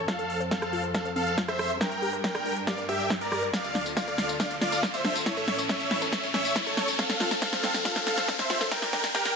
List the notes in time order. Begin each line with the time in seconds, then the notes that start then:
Already playing: A4, riser
0.08 F2 F3 C4 F4 A4 F5, kick, snare, closed hi-hat
0.19 A4, closed hi-hat
0.30 open hi-hat
0.40 C5, closed hi-hat
0.51 C4 A4 F5, kick, snare, closed hi-hat
0.62 cross-stick, closed hi-hat
0.73 F4, open hi-hat
0.84 A4, closed hi-hat
0.94 A4 F5, kick, snare, closed hi-hat
1.05 C5, closed hi-hat
1.16 C4 A4 F5, open hi-hat
1.27 closed hi-hat
1.38 F4, kick, snare, closed hi-hat
1.48 A4 C5 E5, cross-stick, closed hi-hat
1.59 cross-stick, open hi-hat
1.70 C5, closed hi-hat
1.81 G2 G3 D4 A#4 G5, kick, snare, closed hi-hat
1.92 closed hi-hat
2.02 G4, open hi-hat
2.13 A#4, closed hi-hat
2.24 A#4 G5, kick, snare, closed hi-hat
2.35 D5, cross-stick, closed hi-hat
2.46 D4, open hi-hat
2.56 closed hi-hat
2.67 G4 D5 F5, kick, snare, closed hi-hat
2.78 A#4, closed hi-hat
2.89 G4 E5, kick, open hi-hat
3.00 D5, closed hi-hat
3.10 D4, kick, snare, closed hi-hat
3.21 A#4 D5, closed hi-hat
3.32 G4, cross-stick, open hi-hat
3.43 A#4, closed hi-hat
3.54 D2 D3 F4 A4 D5 F5, kick, snare, closed hi-hat, tambourine
3.64 D5, closed hi-hat, tambourine
3.75 D4, snare, open hi-hat
3.86 closed hi-hat, tambourine
3.97 F4 D5 F5, kick, snare, closed hi-hat, tambourine
4.07 A4, closed hi-hat, tambourine
4.18 snare, open hi-hat
4.29 D5, closed hi-hat, tambourine
4.40 D4 D5 F5, kick, snare, closed hi-hat, tambourine
4.51 closed hi-hat, tambourine
4.61 F4 D5 F5, snare, open hi-hat
4.72 A4, closed hi-hat, tambourine
4.83 kick, snare, closed hi-hat, tambourine
4.94 C5 D5 E5, closed hi-hat, tambourine
5.05 D4, snare, open hi-hat
5.15 closed hi-hat, tambourine
5.26 A2 E3 C#4 E4 C#5 E5, kick, snare, closed hi-hat, tambourine
5.37 A4, closed hi-hat, tambourine
5.48 snare, open hi-hat
5.59 C#5, closed hi-hat, tambourine
5.69 C#4 C#5 E5, kick, snare, closed hi-hat, tambourine
5.80 closed hi-hat, tambourine
5.91 E4, snare, open hi-hat
6.02 A4, closed hi-hat, tambourine
6.13 C#5 E5, kick, snare, closed hi-hat, tambourine
6.23 C#5, closed hi-hat, tambourine
6.34 C#4 C#5 E5, snare, open hi-hat
6.45 closed hi-hat, tambourine
6.56 E4, kick, snare, closed hi-hat, tambourine
6.66 A4 C#5, closed hi-hat, tambourine
6.77 snare, open hi-hat
6.88 C#5, closed hi-hat, tambourine
6.99 F2 F3 C4 A4 F5, kick, snare, closed hi-hat, tambourine
7.10 snare, closed hi-hat, tambourine
7.20 F4, snare, open hi-hat
7.31 A4, snare, closed hi-hat, tambourine
7.42 A4 F5, kick, snare, closed hi-hat, tambourine
7.53 C5, snare, closed hi-hat, tambourine
7.63 C4, snare, open hi-hat
7.74 snare, closed hi-hat, tambourine
7.85 F4 A4 F5, kick, snare, closed hi-hat, tambourine
7.96 A4, snare, closed hi-hat, tambourine
8.07 A4 F5, snare, open hi-hat
8.18 C5, snare, closed hi-hat, tambourine
8.28 C4, kick, snare, closed hi-hat, tambourine
8.39 C5 E5, snare, closed hi-hat, tambourine
8.50 F4, snare, open hi-hat
8.61 A4, snare, tambourine
8.71 G2 G3 D4 A#4 G5, kick, snare, closed hi-hat, tambourine
8.82 D5, snare, closed hi-hat, tambourine
8.93 D4, kick, snare, open hi-hat
9.04 snare, closed hi-hat, tambourine
9.15 G4 A#4 G5, kick, snare, closed hi-hat, tambourine
9.25 A#4, snare, closed hi-hat, tambourine